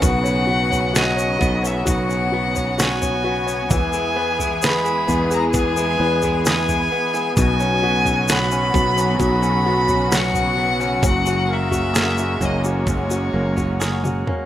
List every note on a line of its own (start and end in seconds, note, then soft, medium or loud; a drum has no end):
0.00 1.37 B1 loud
0.00 1.86 B2 medium
0.00 3.67 C#3 medium
0.00 3.67 F#3 medium
0.00 0.11 A#3 medium
0.00 3.66 B3 medium
0.00 10.98 B3 medium
0.00 0.25 C#4 medium
0.00 3.67 F#4 medium
0.00 0.11 G#4 medium
0.00 kick loud
0.00 floor tom loud
0.00 shaker medium
0.05 0.99 F#5 loud
0.24 0.71 C#4 medium
0.24 0.69 C#5 medium
0.24 shaker soft
0.47 1.41 B3 medium
0.47 0.92 F#4 medium
0.70 1.17 C#4 medium
0.70 1.14 C#5 medium
0.70 floor tom medium
0.70 shaker soft
0.93 1.38 F#4 medium
0.93 2.78 F#4 medium
0.93 1.68 D#5 loud
0.93 snare loud
0.93 shaker medium
1.16 1.63 C#4 medium
1.16 1.61 C#5 medium
1.16 shaker soft
1.39 1.84 B1 loud
1.39 2.33 B3 medium
1.39 1.84 F#4 medium
1.39 kick medium
1.39 floor tom medium
1.39 shaker soft
1.63 2.09 C#4 soft
1.63 2.08 C#5 medium
1.63 1.88 E5 medium
1.63 shaker medium
1.85 3.71 B1 medium
1.85 3.80 B2 medium
1.85 2.31 F#4 medium
1.85 kick medium
1.85 floor tom medium
1.85 shaker medium
1.90 2.84 F#5 loud
2.09 2.55 C#4 medium
2.09 2.53 C#5 medium
2.09 shaker soft
2.32 3.24 B3 medium
2.32 2.77 F#4 medium
2.55 3.00 C#4 medium
2.55 3.00 C#5 medium
2.55 floor tom medium
2.55 shaker soft
2.78 3.23 F#4 medium
2.78 3.80 F#4 medium
2.78 snare loud
2.78 shaker medium
2.82 3.72 G#5 loud
3.01 3.46 C#4 medium
3.01 3.45 C#5 medium
3.01 floor tom medium
3.01 shaker soft
3.24 4.16 B3 medium
3.24 3.69 F#4 medium
3.47 3.80 C#4 medium
3.47 3.70 C#5 medium
3.47 shaker soft
3.70 5.04 E2 loud
3.70 7.33 E3 medium
3.70 5.54 E3 medium
3.70 7.33 G#3 medium
3.70 7.33 G#4 medium
3.70 4.68 G#5 loud
3.70 kick loud
3.70 floor tom loud
3.70 shaker medium
3.93 4.39 E4 medium
3.93 4.37 G#4 medium
3.93 shaker soft
4.16 5.09 B3 medium
4.16 4.61 B4 medium
4.39 4.84 E4 medium
4.39 4.83 G#4 medium
4.39 floor tom medium
4.39 shaker soft
4.62 6.45 G#4 medium
4.62 5.98 B4 medium
4.62 5.33 B5 loud
4.62 snare loud
4.62 shaker medium
4.85 5.31 E4 medium
4.85 5.30 G#4 medium
4.85 shaker medium
5.07 5.96 E2 loud
5.07 5.52 B3 medium
5.07 6.00 B3 medium
5.07 floor tom medium
5.07 shaker soft
5.31 5.77 E4 medium
5.31 5.75 G#4 medium
5.31 5.44 A#5 loud
5.31 shaker soft
5.53 7.47 E3 medium
5.53 6.90 B3 medium
5.53 kick medium
5.53 floor tom medium
5.53 shaker medium
5.58 6.43 G#5 loud
5.76 6.23 E4 medium
5.76 6.22 G#4 medium
5.76 shaker soft
6.00 6.87 E2 loud
6.00 6.92 B3 medium
6.00 6.44 B4 medium
6.22 6.68 E4 medium
6.22 6.68 G#4 medium
6.22 floor tom medium
6.22 shaker soft
6.45 7.47 G#4 medium
6.45 7.34 B4 medium
6.45 7.34 G#5 loud
6.45 snare loud
6.45 shaker medium
6.69 7.12 E4 medium
6.69 7.12 G#4 medium
6.69 floor tom medium
6.69 shaker soft
6.91 7.36 B3 medium
6.91 7.63 B3 medium
7.14 7.46 E4 medium
7.14 7.36 G#4 medium
7.14 shaker medium
7.37 8.70 B1 loud
7.37 9.19 B2 loud
7.37 10.99 B2 medium
7.37 14.46 C#3 medium
7.37 10.99 F#3 medium
7.37 14.46 F#4 medium
7.37 8.34 G#5 loud
7.37 kick loud
7.37 floor tom loud
7.37 shaker medium
7.60 8.05 C#4 medium
7.60 8.04 C#4 medium
7.60 shaker medium
7.83 8.72 B3 medium
7.83 8.28 F#4 medium
8.05 8.51 C#4 medium
8.05 floor tom medium
8.05 shaker soft
8.28 10.11 F#4 medium
8.28 9.65 F#4 medium
8.28 9.22 B5 loud
8.28 snare loud
8.28 shaker medium
8.51 8.96 C#4 medium
8.51 shaker medium
8.74 9.17 B1 loud
8.74 9.18 F#3 medium
8.74 9.65 B3 medium
8.74 kick loud
8.74 floor tom medium
8.74 shaker soft
8.97 9.43 C#4 medium
8.97 9.41 C#4 medium
8.97 shaker medium
9.19 10.99 B1 loud
9.19 11.03 B2 medium
9.19 10.56 F#3 medium
9.19 10.16 B5 loud
9.19 kick medium
9.19 floor tom medium
9.19 shaker medium
9.42 9.87 C#4 medium
9.42 9.88 C#4 medium
9.42 shaker soft
9.66 10.56 B3 medium
9.66 10.10 F#4 medium
9.88 10.34 C#4 medium
9.88 10.33 C#4 medium
9.88 floor tom medium
9.88 shaker soft
10.12 11.00 F#4 medium
10.12 11.93 F#4 medium
10.12 11.04 F#5 loud
10.12 snare loud
10.12 shaker medium
10.34 10.80 C#4 medium
10.34 10.79 C#4 medium
10.34 floor tom medium
10.34 shaker soft
10.57 11.02 F#3 medium
10.57 11.12 B3 medium
10.80 11.02 C#4 medium
10.80 11.24 C#4 medium
10.80 shaker soft
11.02 12.36 F#1 loud
11.02 12.85 F#2 medium
11.02 14.46 F#3 medium
11.02 14.46 G#3 medium
11.02 14.46 A#3 medium
11.02 kick loud
11.02 floor tom loud
11.02 shaker medium
11.06 11.55 F#5 loud
11.25 11.71 C#4 medium
11.25 11.70 F#4 medium
11.25 shaker soft
11.48 12.39 A#3 medium
11.48 11.94 A#4 medium
11.53 12.46 E5 loud
11.71 12.17 C#4 medium
11.71 12.18 F#4 medium
11.71 floor tom medium
11.71 shaker soft
11.94 13.79 G#4 medium
11.94 13.32 A#4 medium
11.94 snare loud
11.94 shaker medium
12.17 12.63 C#4 medium
12.17 12.64 F#4 medium
12.17 shaker soft
12.40 13.29 F#1 loud
12.40 13.32 A#3 medium
12.40 12.88 C#4 medium
12.40 floor tom medium
12.40 shaker soft
12.45 12.66 D#5 medium
12.64 13.09 C#4 soft
12.64 13.09 F#4 medium
12.64 shaker medium
12.68 14.25 C#5 medium
12.86 14.46 F#2 medium
12.86 14.27 C#4 medium
12.86 kick medium
12.86 floor tom medium
12.86 shaker medium
13.10 13.56 C#4 medium
13.10 13.56 F#4 medium
13.10 shaker soft
13.33 14.23 F#1 loud
13.33 14.26 A#3 medium
13.33 13.80 A#4 medium
13.57 14.03 C#4 medium
13.57 14.04 F#4 medium
13.57 floor tom medium
13.57 shaker soft
13.80 14.46 G#4 medium
13.80 14.46 A#4 medium
13.80 snare medium
13.80 shaker medium
14.03 14.46 C#4 medium
14.03 14.46 F#4 medium
14.03 high tom medium
14.03 shaker soft
14.27 14.46 A#3 medium
14.27 14.46 C#4 medium
14.27 mid tom medium